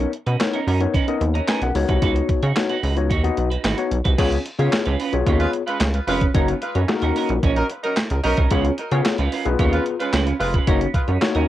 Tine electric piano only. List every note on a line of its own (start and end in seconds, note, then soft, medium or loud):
0.00 0.10 B3 medium
0.00 0.10 D#4 medium
0.00 0.11 A#4 medium
0.00 0.11 C#5 medium
0.40 0.58 B3 medium
0.40 0.58 D#4 medium
0.40 0.58 A#4 medium
0.40 0.59 C#5 medium
0.80 0.93 B3 medium
0.80 0.93 D#4 medium
0.80 0.93 A#4 medium
0.80 0.93 C#5 medium
1.08 1.32 B3 medium
1.08 1.32 D#4 medium
1.08 1.22 A#4 medium
1.08 1.22 D#5 medium
1.35 1.48 C#5 medium
1.35 1.48 A#5 medium
1.49 1.62 B4 medium
1.49 1.61 G#5 medium
1.62 1.88 A#4 medium
1.62 1.88 F#5 medium
1.75 2.40 B3 medium
1.75 2.40 D#4 medium
1.75 2.40 F#4 medium
1.75 2.41 C#5 loud
2.56 2.74 B3 medium
2.56 2.75 D#4 medium
2.56 2.75 F#4 medium
2.56 2.75 C#5 medium
2.97 3.09 B3 medium
2.97 3.09 D#4 medium
2.97 3.09 F#4 medium
2.97 3.09 C#5 medium
3.24 3.48 B3 medium
3.24 3.48 D#4 medium
3.24 3.48 F#4 medium
3.24 3.49 D#5 medium
3.78 3.96 B3 medium
3.78 3.96 D#4 medium
3.78 3.96 F#4 medium
3.78 3.96 C#5 medium
4.18 4.37 B3 medium
4.18 4.37 F4 medium
4.18 4.37 G#4 medium
4.18 4.37 C#5 loud
4.59 4.83 B3 medium
4.59 4.83 F4 medium
4.59 4.84 G#4 medium
4.59 4.84 C#5 medium
5.13 5.61 B3 medium
5.13 5.61 F4 medium
5.13 5.62 G#4 medium
5.13 5.62 C#5 medium
6.34 6.53 A#3 medium
6.34 6.53 D#4 medium
6.34 6.53 F#4 medium
6.34 6.53 C#5 loud
6.75 6.81 F#4 medium
6.75 6.82 A#4 medium
6.88 7.37 A#3 medium
6.88 7.37 D#4 medium
6.88 7.37 F#4 medium
6.88 6.96 G#4 medium
6.96 7.41 A#4 medium
8.51 8.69 B3 medium
8.51 8.69 F4 medium
8.51 8.69 G#4 medium
8.51 8.70 C#5 medium
8.91 9.16 B3 medium
8.91 9.16 F4 medium
8.91 9.16 G#4 medium
8.91 9.16 C#5 medium
9.45 9.94 B3 medium
9.45 9.52 D#4 medium
9.45 9.94 G#4 medium
9.45 9.94 B4 loud
9.52 9.97 F4 medium
10.67 10.85 A#3 medium
10.67 10.86 D#4 medium
10.67 10.86 F#4 medium
10.67 10.86 C#5 medium
11.08 11.14 F#4 medium
11.08 11.14 C#5 medium
11.21 11.48 A#3 medium
11.21 11.48 D#4 medium
11.21 11.48 F#4 medium
11.21 11.48 C#5 medium